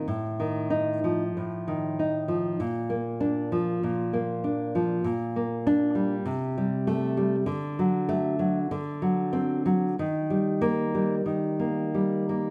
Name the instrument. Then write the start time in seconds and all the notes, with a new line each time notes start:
nylon-string guitar
0.08 A2
0.40 D#3
0.70 D#4
1.04 F3
1.37 A2
1.68 D#3
1.99 D#4
2.28 F3
2.60 A#2
2.90 A#3
3.21 D4
3.52 F3
3.83 A#2
4.13 A#3
4.44 D4
4.75 F3
5.04 A#2
5.36 A#3
5.67 D4
5.95 G3
6.26 C3
6.58 G3
6.87 A3
7.17 G3
7.46 D3
7.79 F#3
8.09 A3
8.39 F#3
8.71 D3
9.02 F#3
9.33 C4
9.66 F#3
9.99 D#3
10.30 G3
10.61 A#3
10.95 G3
11.26 D#3
11.59 A#3
11.94 G3
12.29 A#3